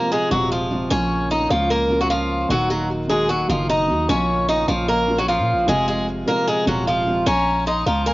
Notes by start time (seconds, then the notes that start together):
Already playing: C3 F3 G#3 A#3 C4 F4
0.11 G#3 G#4
0.30 D#1 C3 F3 F#3 G#3 C4 F4 F#4
0.52 F3 F4
0.70 C3 F3 G#3 C4 F4
0.90 A#1 C#3 F3 A#3 C#4 F4 C#5
1.31 D#4 D#5
1.49 C#2 C#3 F3 A#3 C#4 F4
1.70 A#3 A#4
1.89 C#3 F3 A#3 C#4 F4
2.01 F#3 F#4
2.10 F3 F4
2.49 D#1 D#3 F#3 A#3 D#4 F#4
2.70 F#3 F#4
3.08 D#3 F#3 G#3 A#3 D#4 F#4 G#4
3.29 F#3 F#4
3.48 F#1 D#3 F3 F#3 A#3 D#4 F4 F#4
3.70 D#4 D#5
3.87 D#2 D#3 F#3 A#3 D#4 F#4
4.08 A#1 C#3 F3 A#3 C#4 F4 C#5
4.49 D#4 D#5
4.68 A#1 C#3 F3 A#3 C#4 F4
4.89 A#3 A#4
5.07 C#3 F3 A#3 C#4 F4
5.18 F#3 F#4
5.28 F3 F4
5.39 A#2
5.53 A#1
5.66 F1 C3 F3 G#3 C4 F4 G#4
5.88 G#3 G#4
6.26 C3 F3 G#3 A#3 C4 F4 A#4
6.47 G#3 G#4
6.66 D#1 C3 F3 F#3 G#3 C4 F4 F#4
6.87 F3 F4
7.05 C3 F3 G#3 C4 F4
7.26 A#1 C#4 C#5 A#5
7.67 D#4 D#5 C6
7.86 C#2 F3 F4 A#5
8.06 A#3 A#4 G#5